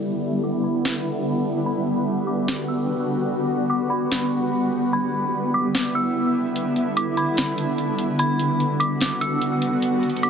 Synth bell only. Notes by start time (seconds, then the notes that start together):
0.44 D6
0.64 B5
1.66 B5
2.27 D6
2.68 E6
3.70 D6
3.90 B5
4.93 B5
5.54 D6
5.95 E6
6.97 D6
7.17 B5
8.19 B5
8.80 D6
9.21 E6
10.23 D6